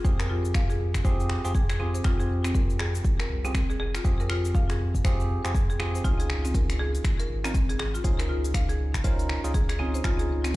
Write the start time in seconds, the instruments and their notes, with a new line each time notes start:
0.05 sub bass F2, tine electric piano C4 F4 G4 G#4, marimba C5, kick, cabasa
0.19 marimba A#4, finger snap, cabasa
0.29 marimba F4
0.45 cabasa
0.54 marimba F5, finger snap, kick, cabasa
0.70 marimba G#4, cabasa
0.94 finger snap, kick, cabasa
1.05 sub bass F2, tine electric piano C4 F4 G4 G#4, marimba C5, kick, cabasa
1.20 cabasa
1.30 finger snap
1.44 sub bass F2, tine electric piano C4 F4 G4 G#4, cabasa
1.55 marimba G#4, kick, cabasa
1.70 marimba G#4, finger snap, cabasa
1.80 tine electric piano C4 F4 G4 G#4, marimba C4
1.94 marimba C5, cabasa
2.04 sub bass F2, tine electric piano C4 F4 G4 G#4, marimba F4, finger snap, kick, cabasa
2.20 marimba G#4, cabasa
2.44 marimba C4, finger snap, cabasa
2.55 marimba A#4, kick, cabasa
2.70 cabasa
2.79 marimba G#4, finger snap
2.95 cabasa
3.04 kick, cabasa
3.20 marimba A#4, finger snap, cabasa
3.30 sub bass C2
3.44 tine electric piano C4 F4 G4 G#4, marimba C4, cabasa
3.54 marimba C4, finger snap, kick, cabasa
3.70 marimba G#4, cabasa
3.80 sub bass F1, marimba G#4
3.95 marimba F4, finger snap, cabasa
4.05 sub bass F2, tine electric piano C4 F4 G4 G#4, marimba C5, kick, cabasa
4.20 marimba A#4, cabasa
4.30 marimba F4, finger snap
4.45 cabasa
4.55 marimba F5, kick, cabasa
4.70 marimba G#4, finger snap, cabasa
4.95 kick, cabasa
5.05 sub bass F2, tine electric piano C4 F4 G4 G#4, marimba C5, finger snap, kick, cabasa
5.20 cabasa
5.44 sub bass F2, tine electric piano C4 F4 G4 G#4, finger snap, cabasa
5.55 marimba G#4, kick, cabasa
5.70 marimba G#4, cabasa
5.80 marimba C4, tine electric piano C4 F4 G4 G#4, finger snap
5.95 marimba C5, cabasa
6.04 sub bass C#2, tine electric piano C#4 D#4 F4 G#4, marimba F4, kick, closed hi-hat, cabasa
6.20 marimba G#4, closed hi-hat, cabasa
6.30 finger snap
6.45 marimba C4, closed hi-hat, cabasa
6.54 marimba A#4, kick, closed hi-hat, cabasa
6.70 finger snap, closed hi-hat, cabasa
6.79 marimba G#4
6.95 closed hi-hat, cabasa
7.04 finger snap, kick, closed hi-hat, cabasa
7.19 marimba A#4, closed hi-hat, cabasa
7.29 sub bass G#1
7.44 marimba C4, tine electric piano C#4 D#4 F4 A#4, finger snap, closed hi-hat, cabasa
7.54 marimba C4, kick, closed hi-hat, cabasa
7.69 marimba G#4, closed hi-hat, cabasa
7.79 sub bass G#1, marimba G#4, finger snap
7.94 marimba F4, cabasa
8.04 sub bass C#2, tine electric piano C#4 D#4 F4 G#4, marimba C5, kick, closed hi-hat, cabasa
8.19 marimba A#4, finger snap, closed hi-hat, cabasa
8.29 marimba F4
8.44 closed hi-hat, cabasa
8.54 marimba F5, finger snap, kick, closed hi-hat, cabasa
8.69 marimba G#4, closed hi-hat, cabasa
8.94 finger snap, kick, closed hi-hat, cabasa
9.04 sub bass C#2, tine electric piano C#4 D#4 F4 A#4, marimba C5, kick, closed hi-hat, cabasa
9.19 closed hi-hat, cabasa
9.29 finger snap
9.44 sub bass C#2, tine electric piano C#4 D#4 F4 G#4, closed hi-hat, cabasa
9.54 marimba G#4, kick, closed hi-hat, cabasa
9.69 marimba G#4, finger snap, closed hi-hat, cabasa
9.79 marimba C4, tine electric piano C#4 D#4 F4 G#4
9.94 marimba C5, cabasa
10.04 sub bass C#2, tine electric piano C#4 D#4 F4 G#4, marimba F4, finger snap, kick, closed hi-hat, cabasa
10.19 marimba G#4, closed hi-hat, cabasa
10.44 marimba C4, finger snap, closed hi-hat, cabasa